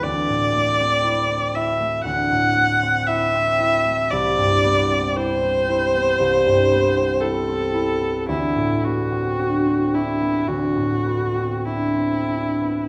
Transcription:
X:1
M:4/4
L:1/16
Q:1/4=58
K:Dmix
V:1 name="Viola"
d6 e2 f4 e4 | d4 c8 A4 | E2 F4 E2 F4 E4 |]
V:2 name="Harp"
[D,,A,CE] A,, A, C E C E A, D,, A,, A, C E C E A, | C,, G,, B, C E C E B, C,, G,, B, C E C E B, | D,, A,, B, C D C D B, D,, A,, B, C D C D B, |]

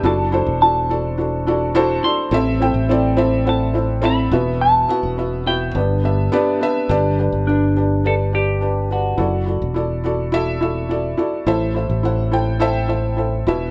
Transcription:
X:1
M:4/4
L:1/16
Q:1/4=105
K:G
V:1 name="Clean electric guitar"
a4 a8 z2 c'2- | c'6 z2 a4 b4 | a6 g6 z4 | z4 D4 A2 G4 F2- |
F4 z12 | z16 |]
V:2 name="Felt piano"
[DEFAd]2 [DEFAc]2 [DEFAd]2 [DEFAd]2 [DEFAd]2 [DEFAd]2 [DEFAc]2 [DEFAd]2 | [CEAce]2 [CEAcg]2 [CEAcd]2 [CEAce]2 [CEAcf]2 [CEAce]2 [CEAce]2 [B,EFBe]2- | [B,EFBe]2 [B,EFBf]2 [B,EFBe]2 [B,EFBe]2 [B,DGBd]2 [B,DGBe]2 [B,DGBd]2 [B,DGBe]2 | [DGBd]2 [DGBd]2 [DGBd]2 [DGBd]2 [DGBd]2 [DGBd]2 [DGBd]2 [DGBd]2 |
[EFAd]2 [EFAd]2 [EFAd]2 [EFAd]2 [EFAe]2 [EFAe]2 [EFAd]2 [EFAd]2 | [EAce]2 [EAce]2 [EAcf]2 [EAcg]2 [EAce]2 [EAce]2 [EAce]2 [EFBe]2 |]
V:3 name="Felt piano" clef=bass
F,6 z8 z2 | [A,,E,]6 z8 B,,2- | B,,4 z4 [G,,D,]6 z2 | [G,,D,]6 z8 z2 |
F,6 z8 z2 | [A,,E,]6 z8 B,,2 |]
V:4 name="Fingered electric bass" clef=bass
F,,,3 E,,,8- E,,,3 z2 | A,,,3 A,,,8- A,,,3 E,,,2- | E,,,2 z E,,,4- E,,, G,,,4 z4 | G,,,3 G,,,12- G,,, |
F,,,3 E,,,8- E,,,3 z2 | A,,,3 A,,,8- A,,,3 E,,,2 |]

